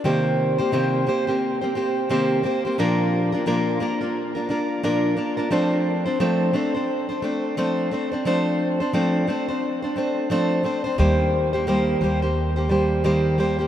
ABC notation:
X:1
M:4/4
L:1/16
Q:"Swing 16ths" 1/4=88
K:Eblyd
V:1 name="Steel-string acoustic guitar"
[C,E,B,CGc]3 [B,CGc] [C,E,B,CGc]2 [B,CGc] [B,CGc]2 [B,CGc] [B,CGc]2 [C,E,B,CGc]2 [B,CGc] [B,CGc] | [B,,F,B,DFB]3 [B,DFB] [B,,F,B,DFB]2 [B,DFB] [B,DFB]2 [B,DFB] [B,DFB]2 [B,,F,B,DFB]2 [B,DFB] [B,DFB] | [F,A,CDc]3 [CDc] [F,A,CDc]2 [A,CDc] [CDc]2 [CDc] [A,CDc]2 [F,A,CDc]2 [A,CDc] [CDc] | [F,A,CDc]3 [CDc] [F,A,CDc]2 [A,CDc] [CDc]2 [CDc] [A,CDc]2 [F,A,CDc]2 [A,CDc] [CDc] |
[E,G,B,Gc]3 [B,Gc] [E,G,B,Gc]2 [G,B,Gc] [B,Gc]2 [B,Gc] [G,B,Gc]2 [E,G,B,Gc]2 [G,B,Gc] [B,Gc] |]
V:2 name="Upright bass" clef=bass
z16 | z16 | z16 | z16 |
E,,6 E,,8- E,,2 |]